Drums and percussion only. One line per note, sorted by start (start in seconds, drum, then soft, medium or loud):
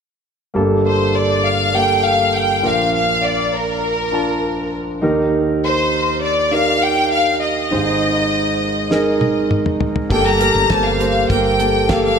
8.91 snare soft
9.21 high tom medium
9.51 mid tom medium
9.66 mid tom medium
9.81 floor tom medium
9.96 floor tom medium
10.10 kick medium
10.10 crash medium
10.26 snare soft
10.41 closed hi-hat medium
10.70 kick medium
10.70 snare medium
10.70 closed hi-hat medium
11.01 closed hi-hat medium
11.30 kick medium
11.30 closed hi-hat medium
11.60 closed hi-hat medium
11.89 kick medium
11.89 snare medium
11.89 closed hi-hat medium